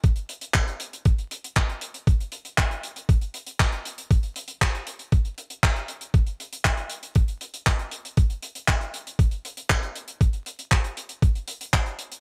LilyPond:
\new DrumStaff \with { instrumentName = "Drums" } \drummode { \time 4/4 \tempo 4 = 118 <hh bd>16 hh16 hh16 hh16 <hc hh bd>16 hh16 hh16 hh16 <hh bd>16 hh16 hh16 hh16 <hc hh bd>16 hh16 hh16 hh16 | <hh bd>16 hh16 hh16 hh16 <hc hh bd>16 hh16 hh16 hh16 <hh bd>16 hh16 hh16 hh16 <hc hh bd>16 hh16 hh16 hh16 | <hh bd>16 hh16 hh16 hh16 <hc hh bd>16 hh16 hh16 hh16 <hh bd>16 hh16 hh16 hh16 <hc hh bd>16 hh16 hh16 hh16 | <hh bd>16 hh16 hh16 hh16 <hc hh bd>16 hh16 hh16 hh16 <hh bd>16 hh16 hh16 hh16 <hc hh bd>16 hh16 hh16 hh16 |
<hh bd>16 hh16 hh16 hh16 <hc hh bd>16 hh16 hh16 hh16 <hh bd>16 hh16 hh16 hh16 <hc hh bd>16 hh16 hh16 hh16 | <hh bd>16 hh16 hh16 hh16 <hc hh bd>16 hh16 hh16 hh16 <hh bd>16 hh16 hh16 hh16 <hc hh bd>16 hh16 hh16 hh16 | }